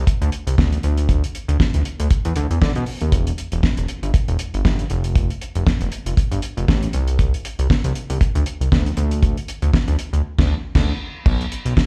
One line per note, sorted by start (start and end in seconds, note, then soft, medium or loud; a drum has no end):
0.07 kick loud
0.07 closed hi-hat medium
0.21 0.30 D2 loud
0.21 closed hi-hat medium
0.32 closed hi-hat medium
0.47 0.56 C2 medium
0.47 closed hi-hat medium
0.58 0.78 D2 medium
0.58 kick loud
0.58 snare loud
0.72 closed hi-hat soft
0.83 1.23 D2 loud
0.83 closed hi-hat medium
0.97 closed hi-hat medium
1.09 kick loud
1.09 closed hi-hat medium
1.24 closed hi-hat medium
1.35 closed hi-hat medium
1.48 1.57 D2 loud
1.48 closed hi-hat medium
1.60 kick loud
1.60 snare loud
1.74 1.83 D2 medium
1.74 closed hi-hat medium
1.85 closed hi-hat medium
2.00 2.08 D2 medium
2.00 closed hi-hat medium
2.11 kick loud
2.11 closed hi-hat medium
2.25 2.34 E2 medium
2.25 closed hi-hat medium
2.36 2.47 D2 loud
2.36 closed hi-hat medium
2.51 2.59 E2 medium
2.51 closed hi-hat soft
2.62 2.73 D3 loud
2.62 kick loud
2.62 snare loud
2.75 2.85 B2 medium
2.75 closed hi-hat soft
2.86 open hi-hat medium
3.01 3.14 D#2 medium
3.01 closed hi-hat medium
3.12 3.32 E1 loud
3.12 kick loud
3.12 closed hi-hat medium
3.27 closed hi-hat medium
3.38 closed hi-hat medium
3.52 3.61 E1 medium
3.52 closed hi-hat medium
3.63 kick loud
3.63 snare loud
3.77 3.86 E1 medium
3.77 closed hi-hat medium
3.88 closed hi-hat medium
4.03 4.11 G1 medium
4.03 closed hi-hat medium
4.14 kick loud
4.14 closed hi-hat medium
4.28 4.37 E1 medium
4.28 closed hi-hat soft
4.39 closed hi-hat medium
4.54 4.63 G1 medium
4.54 closed hi-hat soft
4.65 4.85 G1 loud
4.65 kick medium
4.65 snare loud
4.79 closed hi-hat soft
4.90 5.30 F1 loud
4.90 closed hi-hat medium
5.04 closed hi-hat medium
5.16 kick loud
5.16 closed hi-hat medium
5.30 closed hi-hat medium
5.42 closed hi-hat medium
5.55 5.64 F1 medium
5.55 closed hi-hat soft
5.67 kick loud
5.67 snare loud
5.81 5.90 F1 medium
5.81 closed hi-hat medium
5.92 closed hi-hat medium
6.06 6.15 F1 medium
6.06 closed hi-hat medium
6.17 kick loud
6.17 closed hi-hat medium
6.31 6.40 G1 medium
6.31 closed hi-hat medium
6.42 closed hi-hat medium
6.57 6.66 F1 loud
6.57 closed hi-hat soft
6.68 6.88 A1 medium
6.68 kick loud
6.68 snare loud
6.83 closed hi-hat soft
6.93 7.34 C2 medium
6.93 closed hi-hat medium
7.08 closed hi-hat medium
7.19 kick loud
7.19 closed hi-hat medium
7.34 closed hi-hat soft
7.45 closed hi-hat medium
7.59 7.68 C2 medium
7.59 closed hi-hat medium
7.70 kick loud
7.70 snare loud
7.84 7.93 C2 loud
7.84 closed hi-hat medium
7.95 closed hi-hat medium
8.10 8.18 C2 medium
8.10 closed hi-hat medium
8.21 kick medium
8.21 closed hi-hat medium
8.35 8.44 D2 medium
8.35 closed hi-hat medium
8.46 closed hi-hat medium
8.61 8.69 C2 medium
8.61 closed hi-hat soft
8.72 8.92 D2 medium
8.72 kick loud
8.72 snare loud
8.86 closed hi-hat soft
8.97 9.37 D2 medium
8.97 closed hi-hat medium
9.11 closed hi-hat medium
9.23 kick loud
9.23 closed hi-hat medium
9.37 closed hi-hat soft
9.48 closed hi-hat medium
9.62 9.71 D2 medium
9.62 closed hi-hat soft
9.73 kick loud
9.73 snare loud
9.88 9.96 D2 medium
9.88 closed hi-hat medium
9.99 closed hi-hat medium
10.13 10.22 D2 medium
10.13 closed hi-hat medium
10.38 10.55 D2 loud
10.38 kick loud
10.38 snare loud
10.38 crash medium
10.75 10.93 D2 loud
10.75 kick loud
10.75 snare loud
10.75 crash medium
11.26 11.46 B1 loud
11.26 kick loud
11.26 crash medium
11.41 closed hi-hat soft
11.52 closed hi-hat medium
11.65 11.74 B1 medium
11.65 closed hi-hat medium
11.77 kick medium
11.77 snare loud